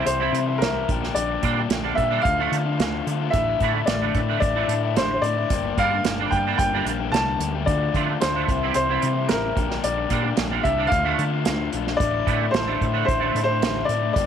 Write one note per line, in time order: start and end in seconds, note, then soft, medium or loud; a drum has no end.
0.00 0.47 C3 medium
0.00 0.32 E3 medium
0.00 0.21 G3 medium
0.00 0.20 C4 medium
0.00 0.19 E4 medium
0.06 0.28 C2 medium
0.06 0.62 C5 medium
0.06 muted overdriven electric guitar stroke soft
0.06 closed hi-hat medium
0.20 0.39 C3 medium
0.20 0.39 G3 medium
0.20 0.33 G3 medium
0.20 0.38 C4 medium
0.20 0.33 C4 medium
0.20 0.35 E4 medium
0.20 0.38 E4 medium
0.32 0.62 C3 medium
0.32 0.60 E3 medium
0.32 0.48 G3 medium
0.32 0.48 C4 medium
0.32 0.46 E4 medium
0.32 closed hi-hat medium
0.47 0.60 G3 medium
0.47 0.61 C4 medium
0.47 0.62 E4 medium
0.58 0.82 C2 medium
0.58 0.87 C3 medium
0.58 0.87 E3 medium
0.58 0.87 G3 medium
0.58 1.10 A#4 medium
0.58 closed hi-hat medium
0.62 0.88 C4 medium
0.62 0.88 E4 medium
0.62 snare loud
0.75 muted overdriven electric guitar stroke soft
0.89 1.10 A#1 medium
0.89 1.15 A#2 medium
0.89 1.16 D3 medium
0.89 1.03 G3 medium
0.89 1.03 D4 medium
0.89 1.02 G4 medium
0.89 kick loud
0.89 closed hi-hat medium
1.03 1.16 G3 medium
1.03 1.17 D4 medium
1.03 1.17 G4 medium
1.03 snare soft
1.15 1.37 A#1 medium
1.15 1.70 A#2 medium
1.15 1.42 D3 medium
1.15 1.43 G3 medium
1.15 1.44 D4 medium
1.15 1.44 G4 loud
1.15 1.66 D5 medium
1.15 closed hi-hat medium
1.30 muted overdriven electric guitar stroke soft
1.43 1.65 A#2 medium
1.43 1.61 D3 medium
1.43 1.70 D3 medium
1.43 1.61 G3 medium
1.43 1.59 G3 medium
1.43 1.61 A#3 medium
1.43 1.61 D4 loud
1.43 1.59 D4 medium
1.43 1.57 G4 medium
1.43 kick medium
1.43 closed hi-hat medium
1.58 1.71 G3 medium
1.58 1.72 D4 medium
1.58 1.72 G4 medium
1.69 1.91 A#1 medium
1.69 2.11 A#2 medium
1.69 1.97 D3 medium
1.69 1.85 G3 medium
1.69 1.85 D4 medium
1.69 1.83 G4 medium
1.69 muted overdriven electric guitar stroke soft
1.69 snare loud
1.69 closed hi-hat medium
1.84 2.02 D3 medium
1.84 2.02 G3 medium
1.84 1.98 G3 medium
1.84 2.02 A#3 medium
1.84 2.01 D4 medium
1.84 2.00 D4 medium
1.84 1.99 G4 medium
1.95 2.19 A#2 medium
1.95 2.23 D3 medium
1.95 2.24 G3 medium
1.95 2.24 E5 medium
1.95 kick medium
1.95 closed hi-hat medium
2.00 2.26 D4 medium
2.00 2.24 G4 medium
2.10 2.24 D3 medium
2.10 2.25 G3 medium
2.10 2.25 A#3 medium
2.10 2.24 D4 medium
2.22 2.46 D2 medium
2.22 2.50 D3 medium
2.22 3.01 F5 medium
2.22 muted overdriven electric guitar stroke soft
2.22 kick loud
2.22 closed hi-hat medium
2.26 2.40 A3 medium
2.26 2.39 D4 loud
2.26 2.37 F4 loud
2.38 2.57 D3 medium
2.38 2.57 F3 medium
2.38 2.57 A3 medium
2.38 2.52 A3 medium
2.38 2.52 D4 medium
2.38 2.57 D4 medium
2.38 2.52 F4 medium
2.51 2.78 D3 medium
2.51 2.81 D3 medium
2.51 2.66 A3 medium
2.51 2.65 D4 medium
2.51 2.63 F4 medium
2.51 closed hi-hat medium
2.65 2.79 A3 medium
2.65 2.80 D4 medium
2.65 2.80 F4 medium
2.79 3.00 D2 medium
2.79 3.05 D3 medium
2.79 3.07 A3 medium
2.79 3.08 D4 medium
2.79 3.08 F4 medium
2.79 snare loud
2.79 closed hi-hat medium
2.94 muted overdriven electric guitar stroke medium
3.07 3.28 D3 medium
3.07 3.32 D3 medium
3.07 3.22 A3 medium
3.07 3.21 D4 medium
3.07 3.20 F4 medium
3.07 closed hi-hat medium
3.21 3.33 A3 soft
3.21 3.35 D4 medium
3.21 3.32 F4 medium
3.30 3.55 A1 medium
3.30 3.85 A2 medium
3.30 3.58 D3 medium
3.30 3.59 A3 medium
3.30 3.88 E5 medium
3.30 kick loud
3.30 closed hi-hat medium
3.35 3.60 D4 medium
3.35 3.60 E4 medium
3.49 muted overdriven electric guitar stroke soft
3.59 3.82 A2 medium
3.59 3.86 D3 medium
3.59 3.79 D3 medium
3.59 3.79 E3 medium
3.59 3.74 A3 medium
3.59 3.79 A3 medium
3.59 3.74 D4 medium
3.59 3.72 E4 medium
3.59 kick medium
3.59 closed hi-hat medium
3.64 3.80 D4 medium
3.73 3.87 A3 medium
3.73 3.88 D4 medium
3.73 3.87 E4 medium
3.86 4.09 A1 medium
3.86 4.28 A2 medium
3.86 4.13 D3 loud
3.86 4.02 A3 medium
3.86 4.00 D4 medium
3.86 3.99 E4 medium
3.86 4.39 D5 medium
3.86 muted overdriven electric guitar stroke soft
3.86 snare loud
3.86 closed hi-hat medium
4.00 4.20 D3 medium
4.00 4.20 E3 medium
4.00 4.19 A3 medium
4.00 4.15 A3 medium
4.00 4.15 D4 medium
4.00 4.19 D4 medium
4.00 4.15 E4 medium
4.14 4.36 A2 medium
4.14 4.68 D3 medium
4.14 4.57 A3 medium
4.14 4.56 D4 medium
4.14 4.54 E4 medium
4.14 kick medium
4.14 closed hi-hat medium
4.29 4.41 D3 medium
4.29 4.41 E3 medium
4.29 4.42 A3 medium
4.29 4.42 D4 medium
4.40 4.63 A1 medium
4.40 4.97 D5 medium
4.40 muted overdriven electric guitar stroke soft
4.40 kick medium
4.40 closed hi-hat medium
4.55 4.74 D3 medium
4.55 4.74 E3 medium
4.55 4.74 A3 medium
4.55 4.70 A3 medium
4.55 4.73 D4 medium
4.55 4.71 D4 medium
4.55 4.70 E4 medium
4.68 4.98 A2 medium
4.68 4.95 D3 medium
4.68 4.85 A3 medium
4.68 4.83 D4 medium
4.68 4.82 E4 medium
4.68 closed hi-hat medium
4.83 4.96 A3 medium
4.83 4.96 D4 medium
4.83 4.96 E4 medium
4.96 5.17 A1 medium
4.96 5.49 A2 medium
4.96 5.21 D3 medium
4.96 5.22 A3 medium
4.96 5.23 D4 medium
4.96 5.23 E4 medium
4.96 5.12 C5 medium
4.96 snare loud
4.96 closed hi-hat medium
5.10 5.22 C5 medium
5.10 muted overdriven electric guitar stroke medium
5.22 5.44 A2 medium
5.22 5.48 D3 medium
5.22 5.37 A3 medium
5.22 5.36 D4 medium
5.22 5.35 E4 medium
5.22 5.78 D5 loud
5.22 closed hi-hat medium
5.36 5.49 A3 medium
5.36 5.49 D4 medium
5.36 5.49 E4 medium
5.49 5.71 G1 medium
5.49 6.02 G2 medium
5.49 6.03 D3 medium
5.49 5.76 G3 medium
5.49 5.76 A#3 medium
5.49 5.77 D4 medium
5.49 5.78 G4 medium
5.49 kick loud
5.49 closed hi-hat medium
5.65 muted overdriven electric guitar stroke soft
5.77 5.99 G2 medium
5.77 5.95 D3 medium
5.77 5.92 G3 medium
5.77 5.96 G3 medium
5.77 5.91 A#3 medium
5.77 5.96 A#3 medium
5.77 5.90 D4 medium
5.77 5.96 D4 medium
5.77 5.90 G4 medium
5.77 6.29 F5 loud
5.77 kick medium
5.77 closed hi-hat medium
5.91 6.03 G3 medium
5.91 6.04 A#3 medium
5.91 6.04 D4 medium
5.91 6.04 G4 medium
6.04 6.26 G1 medium
6.04 6.45 G2 medium
6.04 6.45 D3 medium
6.04 6.19 G3 medium
6.04 6.18 A#3 medium
6.04 6.18 D4 medium
6.04 6.17 G4 medium
6.04 muted overdriven electric guitar stroke soft
6.04 snare loud
6.04 closed hi-hat medium
6.18 6.37 D3 medium
6.18 6.31 G3 medium
6.18 6.37 G3 medium
6.18 6.32 A#3 medium
6.18 6.37 A#3 medium
6.18 6.37 D4 medium
6.18 6.32 D4 medium
6.18 6.32 G4 medium
6.31 6.53 G2 medium
6.31 6.73 G3 medium
6.31 6.73 A#3 medium
6.31 6.72 D4 medium
6.31 6.72 G4 medium
6.31 6.56 G5 medium
6.31 kick medium
6.31 closed hi-hat medium
6.47 6.59 D3 medium
6.47 6.60 G3 medium
6.47 6.60 A#3 medium
6.47 6.60 D4 medium
6.58 6.80 G1 medium
6.58 7.14 G5 medium
6.58 muted overdriven electric guitar stroke soft
6.58 kick loud
6.58 closed hi-hat medium
6.73 6.92 D3 medium
6.73 6.85 G3 medium
6.73 6.91 G3 medium
6.73 6.86 A#3 medium
6.73 6.91 A#3 medium
6.73 6.86 D4 medium
6.73 6.91 D4 medium
6.73 6.87 G4 medium
6.85 7.10 A#1 medium
6.85 7.01 G3 medium
6.85 7.00 A#3 medium
6.85 6.99 D4 medium
6.85 6.99 G4 medium
6.85 closed hi-hat medium
7.00 7.13 G3 medium
7.00 7.13 A#3 medium
7.00 7.14 D4 medium
7.00 7.14 G4 medium
7.11 7.37 C2 medium
7.11 7.66 G2 medium
7.11 7.66 D3 medium
7.11 7.39 G3 medium
7.11 7.41 A#3 medium
7.11 7.40 D4 loud
7.11 7.42 G4 medium
7.11 7.50 A5 loud
7.11 snare loud
7.11 closed hi-hat medium
7.29 muted overdriven electric guitar stroke soft
7.39 7.64 D2 medium
7.39 7.55 G3 medium
7.39 7.54 A#3 medium
7.39 7.54 D4 medium
7.39 7.53 G4 medium
7.39 closed hi-hat medium
7.54 7.67 G3 medium
7.54 7.66 A#3 medium
7.54 7.67 D4 medium
7.54 7.66 G4 medium
7.66 7.88 D2 medium
7.66 7.92 D3 medium
7.66 7.93 A3 medium
7.66 7.94 D4 medium
7.66 7.94 F4 medium
7.66 8.17 D5 medium
7.66 kick loud
7.66 closed hi-hat medium
7.82 muted overdriven electric guitar stroke soft
7.93 8.19 D3 medium
7.93 8.16 D3 medium
7.93 8.12 D3 medium
7.93 8.13 F3 medium
7.93 8.08 A3 medium
7.93 8.13 A3 medium
7.93 8.08 D4 medium
7.93 8.13 D4 medium
7.93 8.07 F4 medium
7.93 kick medium
7.93 closed hi-hat medium
8.08 8.20 A3 medium
8.08 8.21 D4 medium
8.08 8.21 F4 medium
8.20 8.43 D2 medium
8.20 8.46 D3 medium
8.20 8.35 A3 medium
8.20 8.34 D4 medium
8.20 8.33 F4 medium
8.20 8.74 C5 medium
8.20 muted overdriven electric guitar stroke soft
8.20 snare loud
8.20 closed hi-hat medium
8.34 8.49 D3 medium
8.34 8.49 F3 medium
8.34 8.47 A3 medium
8.34 8.49 A3 medium
8.34 8.47 D4 medium
8.34 8.49 D4 medium
8.34 8.46 F4 medium
8.47 8.70 C2 medium
8.47 9.16 C3 medium
8.47 9.01 E3 medium
8.47 8.90 G3 medium
8.47 8.88 C4 medium
8.47 8.88 E4 medium
8.47 kick medium
8.47 closed hi-hat medium
8.63 8.76 C3 medium
8.63 8.76 G3 medium
8.63 8.76 C4 medium
8.63 8.76 E4 medium
8.74 8.97 C2 medium
8.74 9.31 C5 medium
8.74 muted overdriven electric guitar stroke soft
8.74 closed hi-hat medium
8.89 9.08 C3 medium
8.89 9.01 G3 medium
8.89 9.08 G3 medium
8.89 9.02 C4 medium
8.89 9.07 C4 medium
8.89 9.02 E4 medium
8.89 9.07 E4 medium
9.02 9.31 C3 medium
9.02 9.26 E3 medium
9.02 9.15 G3 medium
9.02 9.14 C4 medium
9.02 9.13 E4 medium
9.02 closed hi-hat medium
9.14 9.27 G3 medium
9.14 9.28 C4 medium
9.14 9.28 E4 medium
9.27 9.51 A1 medium
9.27 9.54 C3 medium
9.27 9.54 E3 medium
9.27 9.55 G3 medium
9.27 9.55 C4 medium
9.27 9.55 E4 medium
9.27 9.79 A#4 medium
9.27 snare loud
9.27 closed hi-hat medium
9.44 muted overdriven electric guitar stroke soft
9.56 9.78 A#1 medium
9.56 9.81 A#2 medium
9.56 9.83 D3 medium
9.56 9.69 G3 medium
9.56 9.69 D4 medium
9.56 9.67 G4 medium
9.56 kick loud
9.56 closed hi-hat medium
9.68 9.83 G3 medium
9.68 9.84 D4 medium
9.68 9.84 G4 medium
9.68 snare soft
9.83 10.05 A#1 medium
9.83 10.34 A#2 medium
9.83 10.08 D3 medium
9.83 10.09 G3 medium
9.83 10.10 D4 medium
9.83 10.10 G4 medium
9.83 10.34 D5 medium
9.83 closed hi-hat medium
9.97 muted overdriven electric guitar stroke soft
10.09 10.32 A#2 medium
10.09 10.35 D3 medium
10.09 10.28 D3 medium
10.09 10.23 G3 medium
10.09 10.28 G3 medium
10.09 10.29 A#3 medium
10.09 10.23 D4 medium
10.09 10.29 D4 medium
10.09 10.21 G4 medium
10.09 kick medium
10.09 closed hi-hat medium
10.23 10.36 G3 medium
10.23 10.38 D4 medium
10.23 10.37 G4 medium
10.36 10.59 A#1 medium
10.36 10.77 A#2 medium
10.36 10.61 D3 medium
10.36 10.50 G3 medium
10.36 10.50 D4 medium
10.36 10.48 G4 medium
10.36 muted overdriven electric guitar stroke soft
10.36 snare loud
10.36 closed hi-hat medium
10.49 10.70 D3 medium
10.49 10.62 G3 medium
10.49 10.69 G3 medium
10.49 10.69 A#3 medium
10.49 10.63 D4 medium
10.49 10.69 D4 medium
10.49 10.63 G4 medium
10.62 10.86 C2 medium
10.62 10.88 D3 medium
10.62 10.89 G3 medium
10.62 10.91 D4 medium
10.62 10.90 G4 medium
10.62 10.92 E5 medium
10.62 kick medium
10.62 closed hi-hat medium
10.78 10.90 D3 medium
10.78 10.91 G3 medium
10.78 10.92 A#3 medium
10.78 10.91 D4 medium
10.87 11.17 D3 medium
10.87 11.05 A3 medium
10.87 11.04 D4 medium
10.87 11.02 F4 loud
10.87 11.67 F5 loud
10.87 muted overdriven electric guitar stroke soft
10.91 11.13 D2 medium
10.91 kick loud
10.91 closed hi-hat medium
11.04 11.23 D3 medium
11.04 11.23 F3 medium
11.04 11.23 A3 medium
11.04 11.18 A3 medium
11.04 11.19 D4 medium
11.04 11.23 D4 medium
11.04 11.19 F4 medium
11.18 11.44 D3 medium
11.18 11.48 D3 medium
11.18 11.33 A3 medium
11.18 11.32 D4 medium
11.18 11.29 F4 medium
11.18 closed hi-hat medium
11.31 11.45 A3 medium
11.31 11.46 D4 medium
11.31 11.46 F4 medium
11.45 11.68 D2 medium
11.45 11.72 D3 medium
11.45 11.73 A3 medium
11.45 11.74 D4 medium
11.45 11.73 F4 loud
11.45 snare loud
11.45 closed hi-hat medium
11.59 muted overdriven electric guitar stroke soft
11.73 11.95 A#1 medium
11.73 11.99 D3 medium
11.73 11.89 A3 medium
11.73 11.88 D4 medium
11.73 11.87 F4 medium
11.73 closed hi-hat medium
11.87 12.01 A3 medium
11.87 12.02 D4 medium
11.87 11.99 F4 medium
11.87 snare soft
11.97 12.22 A1 medium
11.97 12.52 A2 medium
11.97 12.49 D5 loud
11.97 kick loud
11.97 closed hi-hat medium
12.01 12.26 D3 medium
12.01 12.28 A3 medium
12.01 12.28 D4 medium
12.01 12.28 E4 medium
12.13 muted overdriven electric guitar stroke soft
12.26 12.48 A2 medium
12.26 12.45 D3 medium
12.26 12.53 D3 medium
12.26 12.45 E3 medium
12.26 12.45 A3 medium
12.26 12.42 A3 medium
12.26 12.45 D4 medium
12.26 12.41 D4 medium
12.26 12.39 E4 medium
12.26 kick medium
12.26 closed hi-hat medium
12.40 12.54 A3 medium
12.40 12.54 D4 medium
12.40 12.54 E4 medium
12.51 12.75 A1 medium
12.51 12.95 A2 medium
12.51 12.79 D3 medium
12.51 12.68 A3 medium
12.51 12.68 D4 medium
12.51 13.04 C5 medium
12.51 muted overdriven electric guitar stroke soft
12.51 snare loud
12.51 closed hi-hat medium
12.55 12.66 E4 medium
12.67 12.86 D3 medium
12.67 12.86 E3 medium
12.67 12.85 A3 medium
12.67 12.81 A3 medium
12.67 12.85 D4 medium
12.67 12.82 D4 medium
12.67 12.82 E4 medium
12.81 13.03 A2 medium
12.81 13.34 D3 medium
12.81 13.22 A3 medium
12.81 13.22 D4 medium
12.81 13.21 E4 medium
12.81 kick medium
12.81 closed hi-hat medium
12.93 13.06 D3 medium
12.93 13.06 E3 medium
12.93 13.07 A3 medium
12.93 13.07 D4 medium
13.05 13.30 A1 medium
13.05 13.42 C5 medium
13.05 muted overdriven electric guitar stroke soft
13.05 kick loud
13.05 closed hi-hat medium
13.20 13.39 D3 medium
13.20 13.39 E3 medium
13.20 13.39 A3 medium
13.20 13.35 A3 medium
13.20 13.39 D4 medium
13.20 13.36 D4 medium
13.20 13.36 E4 medium
13.35 13.64 A2 medium
13.35 13.62 D3 medium
13.35 13.49 A3 medium
13.35 13.49 D4 medium
13.35 13.47 E4 medium
13.35 closed hi-hat medium
13.44 13.84 C5 loud
13.49 13.62 A3 medium
13.49 13.64 D4 medium
13.49 13.63 E4 medium
13.62 13.84 A1 medium
13.62 14.15 A2 medium
13.62 13.89 D3 medium
13.62 13.89 A3 medium
13.62 13.91 D4 medium
13.62 13.91 E4 loud
13.62 snare loud
13.62 closed hi-hat medium
13.75 muted overdriven electric guitar stroke medium
13.85 14.10 A2 medium
13.85 14.12 D5 medium
13.85 closed hi-hat medium
13.90 14.15 D3 medium
13.90 14.03 A3 medium
13.90 14.02 D4 medium
13.90 14.01 E4 medium
14.02 14.15 A3 medium
14.02 14.17 D4 medium
14.02 14.14 E4 medium
14.13 14.26 G1 medium
14.13 14.26 G2 medium
14.13 14.26 D3 medium
14.13 14.26 G3 medium
14.13 14.26 A#3 medium
14.13 14.26 D5 medium
14.13 kick loud
14.13 closed hi-hat medium
14.17 14.26 D4 medium
14.17 14.26 G4 medium